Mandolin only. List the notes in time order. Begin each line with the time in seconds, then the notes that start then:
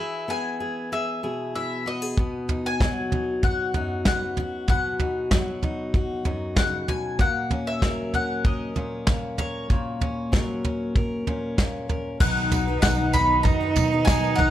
Already playing: E5
0.30 G#5
0.93 E5
1.55 E5
1.87 D#5
2.66 G#5
3.44 F#5
4.07 F#5
4.69 F#5
6.58 F#5
6.89 G#5
7.20 F#5
7.67 E5
8.15 F#5
8.45 D#5
9.39 C#5
12.20 F#5
12.82 F#5
13.14 B5
13.43 A#5
14.05 G#5
14.36 F#5